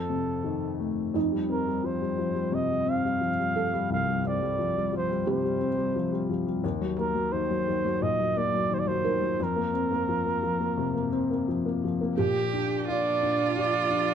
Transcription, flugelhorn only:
0.00 0.76 A4 medium
1.51 1.87 A#4 medium
1.85 2.56 C5 medium
2.54 2.91 D#5 medium
2.90 3.91 F5 medium
3.92 4.28 F5 medium
4.27 4.94 D5 medium
4.96 5.26 C5 medium
5.30 6.27 C5 medium
6.99 7.34 A#4 medium
7.32 8.04 C5 medium
8.02 8.39 D#5 medium
8.38 8.76 D5 medium
8.74 8.81 C5 medium
8.79 8.89 D5 medium
8.88 9.45 C5 medium
9.43 11.49 A#4 medium
12.89 13.53 D5 medium
13.60 14.14 D5 loud

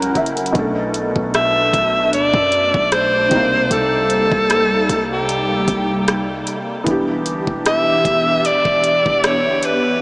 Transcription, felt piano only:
0.00 0.51 F#3 medium
0.00 0.52 C#4 medium
0.00 0.53 E4 medium
0.00 0.54 A#4 medium
0.00 0.13 F#5 medium
0.00 0.57 A#5 medium
0.17 0.53 E5 medium
0.53 3.26 B2 medium
0.53 3.27 A3 medium
0.57 3.28 D4 medium
0.57 3.29 A4 medium
3.29 6.42 C3 medium
3.29 6.43 C4 medium
3.33 6.45 A#3 medium
3.33 6.44 D#4 medium
6.84 9.97 E3 medium
6.84 9.98 B3 medium
6.88 9.99 D4 medium
6.88 10.00 G4 medium

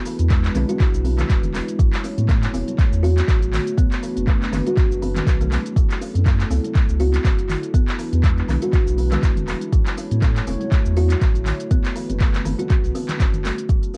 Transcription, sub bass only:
0.19 0.49 E2 medium
0.55 0.64 B1 medium
0.94 1.23 B1 medium
1.30 1.60 E1 loud
1.79 1.88 A1 medium
2.18 2.47 A2 medium
2.53 2.62 E1 medium
2.92 3.22 E2 loud
3.28 3.59 A1 loud
3.78 3.86 B1 loud
4.17 4.46 F#1 medium
4.52 4.61 F#1 medium
4.91 5.20 F#1 medium
5.27 5.57 B1 loud
5.76 5.85 F#1 loud
6.15 6.44 F#2 medium
6.50 6.59 C#2 medium
6.89 7.19 C#2 medium
7.25 7.55 F#1 loud
7.74 7.83 E1 loud
8.13 8.42 E2 medium
8.49 8.58 B1 medium
8.87 9.17 B1 medium
9.23 9.54 E1 loud
9.73 9.82 A1 loud
10.11 10.41 A2 medium
10.47 10.56 E1 medium
10.86 11.15 E2 medium
11.21 11.52 A1 loud
11.71 11.80 B1 loud
12.09 12.39 F#1 medium
12.46 12.54 F#1 medium
12.84 12.91 B1 medium
13.20 13.50 F#1 loud
13.69 13.78 F#1 medium

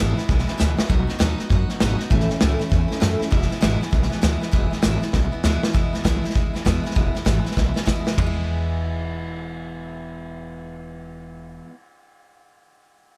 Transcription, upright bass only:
0.00 0.16 G#1 loud
0.19 muted upright bass stroke medium
0.29 0.45 B1 medium
0.61 0.76 D2 loud
0.79 muted upright bass stroke medium
0.90 1.06 B1 loud
1.20 1.36 D#2 medium
1.40 muted upright bass stroke medium
1.51 1.67 F#2 medium
1.70 muted upright bass stroke medium
1.81 1.97 G#1 loud
2.01 muted upright bass stroke medium
2.11 2.27 A1 loud
2.31 muted upright bass stroke medium
2.42 2.58 C#2 loud
2.61 muted upright bass stroke medium
2.72 2.88 E2 loud
2.91 muted upright bass stroke medium
3.02 3.18 F#2 medium
3.21 muted upright bass stroke medium
3.33 3.48 E1 loud
3.51 muted upright bass stroke medium
3.62 3.78 G#1 medium
3.82 muted upright bass stroke medium
3.93 4.09 B1 medium
4.23 4.39 D2 loud
4.54 4.69 E1 loud
4.72 muted upright bass stroke medium
4.84 5.00 G#1 loud
5.03 muted upright bass stroke medium
5.14 5.30 B1 loud
5.33 muted upright bass stroke medium
5.44 5.60 D2 medium
5.63 muted upright bass stroke medium
5.75 5.90 E1 medium
5.94 6.03 A1 loud
6.05 6.20 B1 loud
6.24 muted upright bass stroke medium
6.36 6.51 C#2 medium
6.55 6.63 E2 medium
6.66 6.81 E2 medium
6.85 muted upright bass stroke medium
6.97 7.11 E1 medium
7.15 muted upright bass stroke medium
7.27 7.42 G#1 medium
7.45 muted upright bass stroke medium
7.57 7.72 B1 medium
7.75 muted upright bass stroke medium
7.88 8.03 D2 medium
8.06 8.15 B1 medium
8.18 11.58 E1 medium

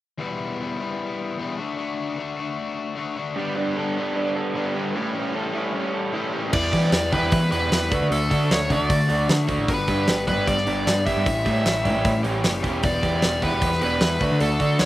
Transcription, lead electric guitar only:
6.53 7.14 D5 medium
7.12 7.49 B4 medium
7.52 8.07 B4 medium
8.12 8.52 A4 medium
8.52 8.72 C#5 medium
8.72 9.30 D5 medium
9.69 10.24 B4 medium
10.28 10.46 B4 medium
10.48 11.06 D5 medium
11.06 12.20 E5 medium
12.85 13.45 D5 medium
13.43 13.81 B4 medium
13.83 14.41 B4 medium
14.41 14.77 A4 medium
14.80 14.85 C#5 medium

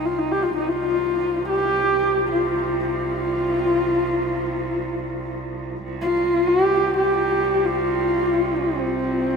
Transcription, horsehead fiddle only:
0.05 0.20 F4 medium
0.18 0.33 D#4 medium
0.31 0.44 G4 medium
0.43 0.54 F4 medium
0.56 0.70 D#4 medium
0.68 1.48 F4 medium
1.49 2.26 G4 medium
2.32 2.83 F4 medium
2.86 5.38 F4 medium
6.01 6.49 F4 medium
6.47 6.96 G4 loud
6.97 7.66 G4 medium
7.65 8.64 F4 medium
8.63 9.37 C4 medium

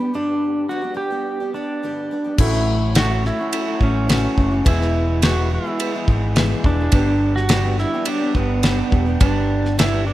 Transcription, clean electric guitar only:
2.38 2.81 A2 medium
2.38 2.95 E3 loud
2.38 2.53 A3 loud
2.38 2.52 C#4 medium
2.38 2.52 F#4 loud
2.53 2.95 A3 medium
2.53 2.96 C#4 medium
2.53 2.96 F#4 medium
2.95 3.38 A2 medium
2.95 3.24 E3 medium
2.95 3.11 A3 loud
2.95 3.10 C#4 medium
2.95 3.09 F#4 loud
3.10 3.24 A3 medium
3.10 3.24 C#4 medium
3.10 3.24 F#4 medium
3.25 muted clean electric guitar stroke soft
3.39 3.68 A3 medium
3.39 3.66 C#4 medium
3.39 3.65 F#4 medium
3.66 3.80 A3 medium
3.66 3.81 C#4 medium
3.66 3.81 F#4 medium
3.81 4.08 E3 medium
3.81 4.08 A3 medium
3.81 4.09 C#4 medium
3.81 4.09 F#4 medium
4.08 4.51 A2 medium
4.08 4.36 E3 medium
4.08 4.24 A3 loud
4.08 4.23 C#4 loud
4.08 4.22 F#4 loud
4.23 4.38 A3 medium
4.23 4.38 C#4 medium
4.23 4.39 F#4 medium
4.37 4.64 E3 medium
4.37 4.52 A3 medium
4.37 4.51 C#4 medium
4.37 4.49 F#4 medium
4.51 4.65 A3 medium
4.51 4.64 C#4 medium
4.51 4.64 F#4 medium
4.64 5.08 E2 medium
4.64 5.08 B2 loud
4.64 4.79 E3 loud
4.64 4.79 G#3 loud
4.64 4.79 B3 medium
4.64 4.77 G#4 loud
4.78 5.21 E3 medium
4.78 5.22 G#3 medium
4.78 5.23 B3 medium
4.78 5.22 G#4 medium
5.22 5.65 E2 medium
5.22 5.65 B2 medium
5.22 5.36 E3 medium
5.22 5.35 G#3 loud
5.22 5.35 B3 loud
5.22 5.34 G#4 loud
5.35 5.48 E3 medium
5.35 5.49 G#3 medium
5.35 5.50 B3 medium
5.35 5.49 G#4 medium
5.50 muted clean electric guitar stroke soft
5.64 5.93 E3 medium
5.64 5.93 G#3 medium
5.64 5.92 B3 medium
5.64 5.91 G#4 medium
5.92 6.05 E3 medium
5.92 6.06 G#3 medium
5.92 6.08 B3 medium
5.92 6.07 G#4 medium
6.06 6.35 E3 loud
6.06 6.36 G#3 medium
6.06 6.37 B3 medium
6.06 6.36 G#4 medium
6.35 6.78 E2 medium
6.35 6.78 B2 loud
6.35 6.51 E3 loud
6.35 6.51 G#3 medium
6.35 6.51 B3 loud
6.35 6.49 G#4 medium
6.50 6.64 E3 medium
6.50 6.65 G#3 medium
6.50 6.67 B3 medium
6.50 6.67 G#4 medium
6.65 6.81 E3 medium
6.65 6.80 G#3 medium
6.65 6.80 B3 medium
6.65 6.79 G#4 medium
6.80 6.93 E3 medium
6.80 6.92 G#3 medium
6.80 6.94 B3 medium
6.80 6.92 G#4 medium
6.93 7.50 G2 loud
6.93 7.36 D3 loud
6.93 7.10 G3 medium
6.93 7.09 B3 loud
6.93 7.08 D4 loud
6.93 7.07 G4 loud
7.07 7.51 G3 medium
7.07 7.51 B3 medium
7.07 7.52 D4 medium
7.07 7.52 G4 medium
7.51 8.63 G2 loud
7.51 7.93 D3 loud
7.51 7.66 G3 medium
7.51 7.65 B3 loud
7.51 7.64 D4 loud
7.51 7.64 G4 loud
7.64 7.77 G3 medium
7.64 7.78 B3 medium
7.64 7.78 D4 medium
7.64 7.78 G4 medium
7.78 muted clean electric guitar stroke soft
7.93 8.22 G3 medium
7.93 8.21 B3 medium
7.93 8.20 D4 medium
7.93 8.19 G4 medium
8.20 8.32 G3 medium
8.20 8.34 B3 medium
8.20 8.34 D4 medium
8.20 8.35 G4 medium
8.34 8.63 G3 medium
8.34 8.62 B3 medium
8.34 8.63 D4 medium
8.34 8.64 G4 medium
8.63 9.06 G2 loud
8.63 9.07 D3 loud
8.63 8.78 G3 loud
8.63 8.77 B3 loud
8.63 8.76 D4 medium
8.63 8.76 G4 loud
8.77 8.90 G3 medium
8.77 8.91 B3 medium
8.77 8.91 D4 medium
8.77 8.92 G4 medium
8.91 9.06 G3 medium
8.91 9.05 B3 medium
8.91 9.04 D4 medium
8.91 9.03 G4 medium
9.04 9.20 G3 medium
9.04 9.20 B3 medium
9.04 9.21 D4 medium
9.04 9.21 G4 medium
9.20 9.63 G2 loud
9.20 9.63 D3 medium
9.20 9.34 G3 loud
9.20 9.34 B3 medium
9.20 9.34 D4 loud
9.20 9.32 G4 loud
9.33 9.77 G3 medium
9.33 9.78 B3 medium
9.33 9.77 D4 medium
9.33 9.78 G4 medium
9.77 10.13 G2 medium
9.77 10.13 D3 medium
9.77 9.92 G3 loud
9.77 9.92 B3 medium
9.77 9.92 D4 loud
9.77 9.90 G4 loud
9.92 10.05 G3 medium
9.92 10.05 B3 medium
9.92 10.05 D4 medium
9.92 10.05 G4 medium
10.06 muted clean electric guitar stroke soft

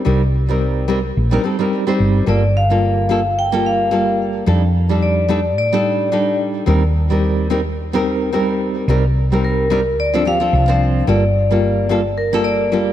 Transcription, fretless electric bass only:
0.06 1.10 C2 medium
1.17 1.37 A#1 medium
2.00 2.19 G1 medium
2.27 4.41 G1 medium
4.47 5.57 F2 medium
5.57 6.61 A2 medium
6.67 8.81 D#2 medium
8.88 9.98 C2 medium
9.98 10.52 D2 medium
10.53 11.02 C2 medium
11.08 12.93 G1 medium

